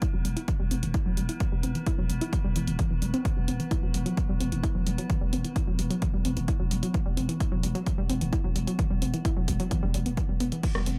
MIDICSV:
0, 0, Header, 1, 5, 480
1, 0, Start_track
1, 0, Key_signature, 1, "minor"
1, 0, Tempo, 461538
1, 1461, Time_signature, 4, 2, 24, 8
1, 11424, End_track
2, 0, Start_track
2, 0, Title_t, "Synth drone"
2, 0, Program_c, 0, 95
2, 0, Note_on_c, 0, 52, 72
2, 0, Note_on_c, 0, 59, 75
2, 11047, Note_off_c, 0, 59, 0
2, 11048, Note_off_c, 0, 52, 0
2, 11059, Note_on_c, 0, 59, 73
2, 11060, Note_on_c, 0, 52, 73
2, 11424, Note_off_c, 0, 52, 0
2, 11424, Note_off_c, 0, 59, 0
2, 11424, End_track
3, 0, Start_track
3, 0, Title_t, "Synth arpeggio sound"
3, 0, Program_c, 1, 84
3, 17, Note_on_c, 1, 64, 84
3, 62, Note_off_c, 1, 64, 0
3, 140, Note_on_c, 1, 54, 94
3, 203, Note_off_c, 1, 54, 0
3, 258, Note_on_c, 1, 55, 74
3, 302, Note_off_c, 1, 55, 0
3, 381, Note_on_c, 1, 64, 78
3, 423, Note_off_c, 1, 64, 0
3, 498, Note_on_c, 1, 52, 78
3, 564, Note_off_c, 1, 52, 0
3, 621, Note_on_c, 1, 55, 101
3, 684, Note_off_c, 1, 55, 0
3, 740, Note_on_c, 1, 60, 79
3, 783, Note_off_c, 1, 60, 0
3, 863, Note_on_c, 1, 52, 75
3, 904, Note_off_c, 1, 52, 0
3, 979, Note_on_c, 1, 64, 84
3, 1023, Note_off_c, 1, 64, 0
3, 1102, Note_on_c, 1, 54, 102
3, 1164, Note_off_c, 1, 54, 0
3, 1221, Note_on_c, 1, 55, 77
3, 1264, Note_off_c, 1, 55, 0
3, 1342, Note_on_c, 1, 64, 73
3, 1384, Note_off_c, 1, 64, 0
3, 1461, Note_on_c, 1, 52, 85
3, 1525, Note_off_c, 1, 52, 0
3, 1584, Note_on_c, 1, 55, 96
3, 1645, Note_off_c, 1, 55, 0
3, 1701, Note_on_c, 1, 60, 71
3, 1744, Note_off_c, 1, 60, 0
3, 1823, Note_on_c, 1, 52, 76
3, 1864, Note_off_c, 1, 52, 0
3, 1941, Note_on_c, 1, 64, 89
3, 1983, Note_off_c, 1, 64, 0
3, 2063, Note_on_c, 1, 54, 101
3, 2125, Note_off_c, 1, 54, 0
3, 2181, Note_on_c, 1, 55, 75
3, 2224, Note_off_c, 1, 55, 0
3, 2303, Note_on_c, 1, 64, 80
3, 2344, Note_off_c, 1, 64, 0
3, 2421, Note_on_c, 1, 52, 79
3, 2485, Note_off_c, 1, 52, 0
3, 2542, Note_on_c, 1, 55, 104
3, 2605, Note_off_c, 1, 55, 0
3, 2662, Note_on_c, 1, 52, 80
3, 2687, Note_off_c, 1, 52, 0
3, 2783, Note_on_c, 1, 52, 76
3, 2824, Note_off_c, 1, 52, 0
3, 2901, Note_on_c, 1, 52, 103
3, 2965, Note_off_c, 1, 52, 0
3, 3023, Note_on_c, 1, 52, 77
3, 3064, Note_off_c, 1, 52, 0
3, 3142, Note_on_c, 1, 55, 78
3, 3184, Note_off_c, 1, 55, 0
3, 3262, Note_on_c, 1, 60, 97
3, 3304, Note_off_c, 1, 60, 0
3, 3381, Note_on_c, 1, 52, 80
3, 3445, Note_off_c, 1, 52, 0
3, 3502, Note_on_c, 1, 55, 95
3, 3564, Note_off_c, 1, 55, 0
3, 3620, Note_on_c, 1, 60, 71
3, 3663, Note_off_c, 1, 60, 0
3, 3741, Note_on_c, 1, 52, 72
3, 3783, Note_off_c, 1, 52, 0
3, 3859, Note_on_c, 1, 64, 85
3, 3903, Note_off_c, 1, 64, 0
3, 3982, Note_on_c, 1, 54, 103
3, 4044, Note_off_c, 1, 54, 0
3, 4100, Note_on_c, 1, 55, 76
3, 4143, Note_off_c, 1, 55, 0
3, 4221, Note_on_c, 1, 54, 100
3, 4263, Note_off_c, 1, 54, 0
3, 4340, Note_on_c, 1, 52, 77
3, 4405, Note_off_c, 1, 52, 0
3, 4462, Note_on_c, 1, 55, 105
3, 4525, Note_off_c, 1, 55, 0
3, 4578, Note_on_c, 1, 60, 80
3, 4622, Note_off_c, 1, 60, 0
3, 4702, Note_on_c, 1, 52, 78
3, 4744, Note_off_c, 1, 52, 0
3, 4819, Note_on_c, 1, 64, 85
3, 4863, Note_off_c, 1, 64, 0
3, 4941, Note_on_c, 1, 54, 94
3, 5004, Note_off_c, 1, 54, 0
3, 5060, Note_on_c, 1, 55, 76
3, 5103, Note_off_c, 1, 55, 0
3, 5181, Note_on_c, 1, 54, 102
3, 5223, Note_off_c, 1, 54, 0
3, 5298, Note_on_c, 1, 52, 80
3, 5363, Note_off_c, 1, 52, 0
3, 5421, Note_on_c, 1, 55, 100
3, 5484, Note_off_c, 1, 55, 0
3, 5541, Note_on_c, 1, 60, 72
3, 5584, Note_off_c, 1, 60, 0
3, 5662, Note_on_c, 1, 52, 75
3, 5704, Note_off_c, 1, 52, 0
3, 5779, Note_on_c, 1, 64, 82
3, 5823, Note_off_c, 1, 64, 0
3, 5901, Note_on_c, 1, 54, 100
3, 5964, Note_off_c, 1, 54, 0
3, 6020, Note_on_c, 1, 55, 74
3, 6063, Note_off_c, 1, 55, 0
3, 6141, Note_on_c, 1, 54, 101
3, 6183, Note_off_c, 1, 54, 0
3, 6260, Note_on_c, 1, 52, 80
3, 6325, Note_off_c, 1, 52, 0
3, 6383, Note_on_c, 1, 55, 101
3, 6445, Note_off_c, 1, 55, 0
3, 6500, Note_on_c, 1, 60, 81
3, 6543, Note_off_c, 1, 60, 0
3, 6621, Note_on_c, 1, 52, 76
3, 6663, Note_off_c, 1, 52, 0
3, 6740, Note_on_c, 1, 64, 85
3, 6783, Note_off_c, 1, 64, 0
3, 6862, Note_on_c, 1, 54, 98
3, 6924, Note_off_c, 1, 54, 0
3, 6979, Note_on_c, 1, 55, 75
3, 7023, Note_off_c, 1, 55, 0
3, 7101, Note_on_c, 1, 54, 97
3, 7143, Note_off_c, 1, 54, 0
3, 7218, Note_on_c, 1, 52, 80
3, 7284, Note_off_c, 1, 52, 0
3, 7340, Note_on_c, 1, 55, 102
3, 7404, Note_off_c, 1, 55, 0
3, 7458, Note_on_c, 1, 60, 71
3, 7502, Note_off_c, 1, 60, 0
3, 7580, Note_on_c, 1, 52, 80
3, 7623, Note_off_c, 1, 52, 0
3, 7698, Note_on_c, 1, 64, 81
3, 7742, Note_off_c, 1, 64, 0
3, 7819, Note_on_c, 1, 54, 103
3, 7883, Note_off_c, 1, 54, 0
3, 7939, Note_on_c, 1, 55, 76
3, 7983, Note_off_c, 1, 55, 0
3, 8060, Note_on_c, 1, 54, 103
3, 8103, Note_off_c, 1, 54, 0
3, 8179, Note_on_c, 1, 52, 81
3, 8244, Note_off_c, 1, 52, 0
3, 8301, Note_on_c, 1, 55, 101
3, 8364, Note_off_c, 1, 55, 0
3, 8418, Note_on_c, 1, 60, 80
3, 8462, Note_off_c, 1, 60, 0
3, 8540, Note_on_c, 1, 52, 73
3, 8583, Note_off_c, 1, 52, 0
3, 8658, Note_on_c, 1, 64, 86
3, 8702, Note_off_c, 1, 64, 0
3, 8779, Note_on_c, 1, 54, 104
3, 8843, Note_off_c, 1, 54, 0
3, 8898, Note_on_c, 1, 55, 74
3, 8942, Note_off_c, 1, 55, 0
3, 9021, Note_on_c, 1, 54, 96
3, 9063, Note_off_c, 1, 54, 0
3, 9139, Note_on_c, 1, 52, 81
3, 9204, Note_off_c, 1, 52, 0
3, 9261, Note_on_c, 1, 55, 101
3, 9324, Note_off_c, 1, 55, 0
3, 9380, Note_on_c, 1, 60, 76
3, 9423, Note_off_c, 1, 60, 0
3, 9501, Note_on_c, 1, 52, 78
3, 9543, Note_off_c, 1, 52, 0
3, 9620, Note_on_c, 1, 64, 87
3, 9663, Note_off_c, 1, 64, 0
3, 9742, Note_on_c, 1, 54, 97
3, 9805, Note_off_c, 1, 54, 0
3, 9859, Note_on_c, 1, 55, 73
3, 9903, Note_off_c, 1, 55, 0
3, 9982, Note_on_c, 1, 54, 100
3, 10024, Note_off_c, 1, 54, 0
3, 10098, Note_on_c, 1, 52, 81
3, 10164, Note_off_c, 1, 52, 0
3, 10222, Note_on_c, 1, 55, 98
3, 10284, Note_off_c, 1, 55, 0
3, 10340, Note_on_c, 1, 55, 80
3, 10404, Note_off_c, 1, 55, 0
3, 10461, Note_on_c, 1, 59, 76
3, 10487, Note_off_c, 1, 59, 0
3, 10580, Note_on_c, 1, 52, 87
3, 10645, Note_off_c, 1, 52, 0
3, 10703, Note_on_c, 1, 55, 76
3, 10728, Note_off_c, 1, 55, 0
3, 10820, Note_on_c, 1, 59, 102
3, 10885, Note_off_c, 1, 59, 0
3, 10943, Note_on_c, 1, 52, 78
3, 10984, Note_off_c, 1, 52, 0
3, 11061, Note_on_c, 1, 52, 79
3, 11125, Note_off_c, 1, 52, 0
3, 11182, Note_on_c, 1, 55, 105
3, 11245, Note_off_c, 1, 55, 0
3, 11303, Note_on_c, 1, 60, 67
3, 11345, Note_off_c, 1, 60, 0
3, 11424, End_track
4, 0, Start_track
4, 0, Title_t, "808-style bass"
4, 0, Program_c, 2, 38
4, 143, Note_on_c, 2, 28, 76
4, 254, Note_off_c, 2, 28, 0
4, 261, Note_on_c, 2, 28, 99
4, 380, Note_off_c, 2, 28, 0
4, 623, Note_on_c, 2, 28, 77
4, 735, Note_off_c, 2, 28, 0
4, 741, Note_on_c, 2, 28, 103
4, 856, Note_off_c, 2, 28, 0
4, 862, Note_on_c, 2, 28, 80
4, 978, Note_off_c, 2, 28, 0
4, 1103, Note_on_c, 2, 28, 72
4, 1214, Note_off_c, 2, 28, 0
4, 1220, Note_on_c, 2, 28, 97
4, 1340, Note_off_c, 2, 28, 0
4, 1582, Note_on_c, 2, 28, 78
4, 1694, Note_off_c, 2, 28, 0
4, 1700, Note_on_c, 2, 28, 91
4, 1820, Note_off_c, 2, 28, 0
4, 2061, Note_on_c, 2, 28, 75
4, 2172, Note_off_c, 2, 28, 0
4, 2179, Note_on_c, 2, 28, 98
4, 2299, Note_off_c, 2, 28, 0
4, 2541, Note_on_c, 2, 28, 79
4, 2653, Note_off_c, 2, 28, 0
4, 2659, Note_on_c, 2, 28, 101
4, 2775, Note_off_c, 2, 28, 0
4, 2781, Note_on_c, 2, 28, 83
4, 2898, Note_off_c, 2, 28, 0
4, 3021, Note_on_c, 2, 28, 71
4, 3132, Note_off_c, 2, 28, 0
4, 3138, Note_on_c, 2, 28, 100
4, 3259, Note_off_c, 2, 28, 0
4, 3500, Note_on_c, 2, 28, 72
4, 3613, Note_off_c, 2, 28, 0
4, 3619, Note_on_c, 2, 28, 93
4, 3740, Note_off_c, 2, 28, 0
4, 3982, Note_on_c, 2, 28, 77
4, 4095, Note_off_c, 2, 28, 0
4, 4101, Note_on_c, 2, 28, 99
4, 4221, Note_off_c, 2, 28, 0
4, 4462, Note_on_c, 2, 28, 76
4, 4574, Note_off_c, 2, 28, 0
4, 4580, Note_on_c, 2, 28, 104
4, 4698, Note_off_c, 2, 28, 0
4, 4704, Note_on_c, 2, 28, 88
4, 4819, Note_off_c, 2, 28, 0
4, 4944, Note_on_c, 2, 28, 73
4, 5055, Note_off_c, 2, 28, 0
4, 5061, Note_on_c, 2, 28, 99
4, 5181, Note_off_c, 2, 28, 0
4, 5424, Note_on_c, 2, 28, 76
4, 5536, Note_off_c, 2, 28, 0
4, 5542, Note_on_c, 2, 28, 94
4, 5661, Note_off_c, 2, 28, 0
4, 5903, Note_on_c, 2, 28, 75
4, 6015, Note_off_c, 2, 28, 0
4, 6021, Note_on_c, 2, 28, 96
4, 6141, Note_off_c, 2, 28, 0
4, 6384, Note_on_c, 2, 28, 79
4, 6494, Note_off_c, 2, 28, 0
4, 6500, Note_on_c, 2, 28, 100
4, 6615, Note_off_c, 2, 28, 0
4, 6621, Note_on_c, 2, 28, 82
4, 6738, Note_off_c, 2, 28, 0
4, 6862, Note_on_c, 2, 28, 77
4, 6974, Note_off_c, 2, 28, 0
4, 6980, Note_on_c, 2, 28, 100
4, 7100, Note_off_c, 2, 28, 0
4, 7343, Note_on_c, 2, 28, 78
4, 7454, Note_off_c, 2, 28, 0
4, 7460, Note_on_c, 2, 28, 90
4, 7580, Note_off_c, 2, 28, 0
4, 7821, Note_on_c, 2, 28, 73
4, 7933, Note_off_c, 2, 28, 0
4, 7939, Note_on_c, 2, 28, 101
4, 8060, Note_off_c, 2, 28, 0
4, 8303, Note_on_c, 2, 28, 76
4, 8413, Note_off_c, 2, 28, 0
4, 8420, Note_on_c, 2, 28, 98
4, 8536, Note_off_c, 2, 28, 0
4, 8542, Note_on_c, 2, 28, 80
4, 8658, Note_off_c, 2, 28, 0
4, 8782, Note_on_c, 2, 28, 73
4, 8893, Note_off_c, 2, 28, 0
4, 8899, Note_on_c, 2, 28, 101
4, 9020, Note_off_c, 2, 28, 0
4, 9262, Note_on_c, 2, 28, 76
4, 9373, Note_off_c, 2, 28, 0
4, 9379, Note_on_c, 2, 28, 91
4, 9500, Note_off_c, 2, 28, 0
4, 9741, Note_on_c, 2, 28, 74
4, 9854, Note_off_c, 2, 28, 0
4, 9860, Note_on_c, 2, 28, 92
4, 9980, Note_off_c, 2, 28, 0
4, 10223, Note_on_c, 2, 28, 80
4, 10335, Note_off_c, 2, 28, 0
4, 10341, Note_on_c, 2, 28, 97
4, 10457, Note_off_c, 2, 28, 0
4, 10463, Note_on_c, 2, 28, 82
4, 10578, Note_off_c, 2, 28, 0
4, 10703, Note_on_c, 2, 28, 74
4, 10814, Note_off_c, 2, 28, 0
4, 10820, Note_on_c, 2, 28, 105
4, 10940, Note_off_c, 2, 28, 0
4, 11183, Note_on_c, 2, 28, 72
4, 11296, Note_off_c, 2, 28, 0
4, 11302, Note_on_c, 2, 28, 92
4, 11421, Note_off_c, 2, 28, 0
4, 11424, End_track
5, 0, Start_track
5, 0, Title_t, "Drums"
5, 19, Note_on_c, 9, 42, 68
5, 20, Note_on_c, 9, 36, 122
5, 123, Note_off_c, 9, 42, 0
5, 124, Note_off_c, 9, 36, 0
5, 260, Note_on_c, 9, 42, 96
5, 364, Note_off_c, 9, 42, 0
5, 382, Note_on_c, 9, 42, 64
5, 486, Note_off_c, 9, 42, 0
5, 499, Note_on_c, 9, 42, 66
5, 500, Note_on_c, 9, 36, 121
5, 603, Note_off_c, 9, 42, 0
5, 604, Note_off_c, 9, 36, 0
5, 739, Note_on_c, 9, 42, 97
5, 843, Note_off_c, 9, 42, 0
5, 862, Note_on_c, 9, 42, 67
5, 966, Note_off_c, 9, 42, 0
5, 979, Note_on_c, 9, 42, 64
5, 980, Note_on_c, 9, 36, 126
5, 1083, Note_off_c, 9, 42, 0
5, 1084, Note_off_c, 9, 36, 0
5, 1219, Note_on_c, 9, 42, 90
5, 1323, Note_off_c, 9, 42, 0
5, 1341, Note_on_c, 9, 42, 61
5, 1445, Note_off_c, 9, 42, 0
5, 1459, Note_on_c, 9, 42, 58
5, 1460, Note_on_c, 9, 36, 121
5, 1563, Note_off_c, 9, 42, 0
5, 1564, Note_off_c, 9, 36, 0
5, 1699, Note_on_c, 9, 42, 85
5, 1803, Note_off_c, 9, 42, 0
5, 1822, Note_on_c, 9, 42, 59
5, 1926, Note_off_c, 9, 42, 0
5, 1939, Note_on_c, 9, 42, 66
5, 1940, Note_on_c, 9, 36, 122
5, 2043, Note_off_c, 9, 42, 0
5, 2044, Note_off_c, 9, 36, 0
5, 2180, Note_on_c, 9, 42, 93
5, 2284, Note_off_c, 9, 42, 0
5, 2302, Note_on_c, 9, 42, 63
5, 2406, Note_off_c, 9, 42, 0
5, 2420, Note_on_c, 9, 36, 118
5, 2421, Note_on_c, 9, 42, 64
5, 2524, Note_off_c, 9, 36, 0
5, 2525, Note_off_c, 9, 42, 0
5, 2660, Note_on_c, 9, 42, 96
5, 2764, Note_off_c, 9, 42, 0
5, 2782, Note_on_c, 9, 42, 61
5, 2886, Note_off_c, 9, 42, 0
5, 2901, Note_on_c, 9, 36, 112
5, 2901, Note_on_c, 9, 42, 66
5, 3005, Note_off_c, 9, 36, 0
5, 3005, Note_off_c, 9, 42, 0
5, 3141, Note_on_c, 9, 42, 85
5, 3245, Note_off_c, 9, 42, 0
5, 3263, Note_on_c, 9, 42, 62
5, 3367, Note_off_c, 9, 42, 0
5, 3381, Note_on_c, 9, 36, 126
5, 3381, Note_on_c, 9, 42, 58
5, 3485, Note_off_c, 9, 36, 0
5, 3485, Note_off_c, 9, 42, 0
5, 3620, Note_on_c, 9, 46, 101
5, 3724, Note_off_c, 9, 46, 0
5, 3742, Note_on_c, 9, 42, 61
5, 3846, Note_off_c, 9, 42, 0
5, 3860, Note_on_c, 9, 36, 113
5, 3860, Note_on_c, 9, 42, 60
5, 3964, Note_off_c, 9, 36, 0
5, 3964, Note_off_c, 9, 42, 0
5, 4100, Note_on_c, 9, 46, 108
5, 4204, Note_off_c, 9, 46, 0
5, 4223, Note_on_c, 9, 42, 61
5, 4327, Note_off_c, 9, 42, 0
5, 4341, Note_on_c, 9, 36, 110
5, 4341, Note_on_c, 9, 42, 62
5, 4445, Note_off_c, 9, 36, 0
5, 4445, Note_off_c, 9, 42, 0
5, 4581, Note_on_c, 9, 46, 107
5, 4685, Note_off_c, 9, 46, 0
5, 4703, Note_on_c, 9, 42, 60
5, 4807, Note_off_c, 9, 42, 0
5, 4821, Note_on_c, 9, 36, 115
5, 4822, Note_on_c, 9, 42, 62
5, 4925, Note_off_c, 9, 36, 0
5, 4926, Note_off_c, 9, 42, 0
5, 5061, Note_on_c, 9, 46, 99
5, 5165, Note_off_c, 9, 46, 0
5, 5183, Note_on_c, 9, 42, 59
5, 5287, Note_off_c, 9, 42, 0
5, 5301, Note_on_c, 9, 36, 116
5, 5301, Note_on_c, 9, 42, 61
5, 5405, Note_off_c, 9, 36, 0
5, 5405, Note_off_c, 9, 42, 0
5, 5542, Note_on_c, 9, 46, 105
5, 5646, Note_off_c, 9, 46, 0
5, 5663, Note_on_c, 9, 42, 59
5, 5767, Note_off_c, 9, 42, 0
5, 5781, Note_on_c, 9, 36, 112
5, 5781, Note_on_c, 9, 42, 63
5, 5885, Note_off_c, 9, 36, 0
5, 5885, Note_off_c, 9, 42, 0
5, 6020, Note_on_c, 9, 46, 102
5, 6124, Note_off_c, 9, 46, 0
5, 6142, Note_on_c, 9, 42, 62
5, 6246, Note_off_c, 9, 42, 0
5, 6260, Note_on_c, 9, 42, 66
5, 6261, Note_on_c, 9, 36, 114
5, 6364, Note_off_c, 9, 42, 0
5, 6365, Note_off_c, 9, 36, 0
5, 6499, Note_on_c, 9, 46, 104
5, 6603, Note_off_c, 9, 46, 0
5, 6622, Note_on_c, 9, 42, 64
5, 6726, Note_off_c, 9, 42, 0
5, 6740, Note_on_c, 9, 42, 62
5, 6741, Note_on_c, 9, 36, 106
5, 6844, Note_off_c, 9, 42, 0
5, 6845, Note_off_c, 9, 36, 0
5, 6980, Note_on_c, 9, 46, 101
5, 7084, Note_off_c, 9, 46, 0
5, 7102, Note_on_c, 9, 42, 63
5, 7206, Note_off_c, 9, 42, 0
5, 7220, Note_on_c, 9, 36, 115
5, 7220, Note_on_c, 9, 42, 59
5, 7324, Note_off_c, 9, 36, 0
5, 7324, Note_off_c, 9, 42, 0
5, 7460, Note_on_c, 9, 46, 103
5, 7564, Note_off_c, 9, 46, 0
5, 7582, Note_on_c, 9, 42, 62
5, 7686, Note_off_c, 9, 42, 0
5, 7700, Note_on_c, 9, 36, 109
5, 7700, Note_on_c, 9, 42, 67
5, 7804, Note_off_c, 9, 36, 0
5, 7804, Note_off_c, 9, 42, 0
5, 7940, Note_on_c, 9, 46, 100
5, 8044, Note_off_c, 9, 46, 0
5, 8062, Note_on_c, 9, 42, 65
5, 8166, Note_off_c, 9, 42, 0
5, 8179, Note_on_c, 9, 42, 65
5, 8180, Note_on_c, 9, 36, 105
5, 8283, Note_off_c, 9, 42, 0
5, 8284, Note_off_c, 9, 36, 0
5, 8419, Note_on_c, 9, 46, 103
5, 8523, Note_off_c, 9, 46, 0
5, 8542, Note_on_c, 9, 42, 63
5, 8646, Note_off_c, 9, 42, 0
5, 8660, Note_on_c, 9, 36, 106
5, 8660, Note_on_c, 9, 42, 66
5, 8764, Note_off_c, 9, 36, 0
5, 8764, Note_off_c, 9, 42, 0
5, 8900, Note_on_c, 9, 46, 96
5, 9004, Note_off_c, 9, 46, 0
5, 9022, Note_on_c, 9, 42, 59
5, 9126, Note_off_c, 9, 42, 0
5, 9140, Note_on_c, 9, 36, 116
5, 9140, Note_on_c, 9, 42, 63
5, 9244, Note_off_c, 9, 36, 0
5, 9244, Note_off_c, 9, 42, 0
5, 9380, Note_on_c, 9, 46, 100
5, 9484, Note_off_c, 9, 46, 0
5, 9502, Note_on_c, 9, 42, 62
5, 9606, Note_off_c, 9, 42, 0
5, 9620, Note_on_c, 9, 36, 112
5, 9620, Note_on_c, 9, 42, 67
5, 9724, Note_off_c, 9, 36, 0
5, 9724, Note_off_c, 9, 42, 0
5, 9859, Note_on_c, 9, 46, 110
5, 9860, Note_on_c, 9, 36, 54
5, 9963, Note_off_c, 9, 46, 0
5, 9964, Note_off_c, 9, 36, 0
5, 9982, Note_on_c, 9, 42, 68
5, 10086, Note_off_c, 9, 42, 0
5, 10100, Note_on_c, 9, 36, 109
5, 10100, Note_on_c, 9, 42, 68
5, 10204, Note_off_c, 9, 36, 0
5, 10204, Note_off_c, 9, 42, 0
5, 10340, Note_on_c, 9, 46, 104
5, 10444, Note_off_c, 9, 46, 0
5, 10462, Note_on_c, 9, 42, 66
5, 10566, Note_off_c, 9, 42, 0
5, 10580, Note_on_c, 9, 36, 108
5, 10580, Note_on_c, 9, 42, 66
5, 10684, Note_off_c, 9, 36, 0
5, 10684, Note_off_c, 9, 42, 0
5, 10820, Note_on_c, 9, 46, 98
5, 10924, Note_off_c, 9, 46, 0
5, 10941, Note_on_c, 9, 42, 63
5, 11045, Note_off_c, 9, 42, 0
5, 11059, Note_on_c, 9, 42, 68
5, 11059, Note_on_c, 9, 49, 69
5, 11060, Note_on_c, 9, 36, 119
5, 11163, Note_off_c, 9, 42, 0
5, 11163, Note_off_c, 9, 49, 0
5, 11164, Note_off_c, 9, 36, 0
5, 11181, Note_on_c, 9, 37, 63
5, 11285, Note_off_c, 9, 37, 0
5, 11298, Note_on_c, 9, 46, 105
5, 11402, Note_off_c, 9, 46, 0
5, 11424, End_track
0, 0, End_of_file